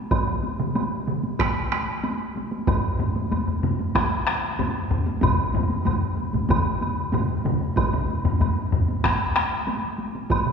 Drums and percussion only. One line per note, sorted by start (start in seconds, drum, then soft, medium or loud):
0.11 taiko loud
0.11 taiko high medium
0.11 high woodblock soft
0.27 taiko mid medium
0.43 taiko high medium
0.60 taiko mid medium
0.60 taiko high soft
0.75 taiko mid medium
0.75 taiko high medium
0.75 high woodblock soft
1.07 taiko mid medium
1.07 taiko high soft
1.23 taiko high soft
1.39 taiko rim medium
1.39 taiko loud
1.39 taiko high medium
1.39 high woodblock soft
1.72 taiko rim medium
1.72 taiko high medium
1.72 high woodblock soft
2.04 taiko high medium
2.04 high woodblock soft
2.36 taiko high medium
2.51 taiko high medium
2.67 taiko loud
2.67 taiko low-mid medium
2.67 taiko high medium
2.67 high woodblock soft
2.99 taiko low-mid medium
2.99 taiko high medium
3.16 taiko high medium
3.31 taiko low-mid medium
3.31 taiko high medium
3.31 high woodblock soft
3.48 taiko low-mid medium
3.63 taiko low-mid medium
3.63 taiko high soft
3.79 taiko high medium
3.95 taiko rim medium
3.95 taiko medium
3.95 taiko high medium
3.95 high woodblock soft
4.27 taiko rim medium
4.27 high woodblock soft
4.59 taiko low-mid medium
4.59 taiko high medium
4.59 high woodblock soft
4.91 taiko low-mid medium
5.06 taiko high medium
5.22 taiko loud
5.22 taiko low-mid loud
5.22 taiko mid medium
5.22 taiko high medium
5.22 high woodblock medium
5.54 taiko low-mid medium
5.54 taiko mid medium
5.54 taiko high medium
5.70 taiko high soft
5.85 taiko low-mid medium
5.85 taiko mid medium
5.85 taiko high medium
5.85 high woodblock soft
6.17 taiko high medium
6.33 taiko low-mid medium
6.33 taiko mid medium
6.33 taiko high medium
6.49 taiko medium
6.49 taiko low-mid medium
6.49 taiko mid medium
6.49 taiko high medium
6.49 high woodblock medium
6.81 taiko high medium
6.81 high woodblock soft
7.12 taiko low-mid medium
7.12 taiko mid medium
7.12 taiko high medium
7.12 high woodblock soft
7.44 taiko low-mid medium
7.44 taiko mid medium
7.44 taiko high soft
7.60 taiko high soft
7.77 taiko loud
7.77 taiko high medium
7.77 high woodblock soft
7.93 taiko low-mid medium
8.09 taiko high soft
8.25 taiko low-mid medium
8.25 taiko high soft
8.40 taiko low-mid medium
8.40 taiko high medium
8.40 high woodblock soft
8.72 taiko low-mid medium
8.72 taiko high soft
8.88 taiko high soft
9.04 taiko rim medium
9.04 taiko loud
9.04 taiko high medium
9.04 high woodblock medium
9.36 taiko rim medium
9.36 taiko high soft
9.36 high woodblock soft
9.67 taiko high medium
9.67 high woodblock soft
9.98 taiko high soft
10.15 taiko high soft
10.30 taiko loud
10.30 taiko high medium
10.30 high woodblock medium
10.46 taiko mid medium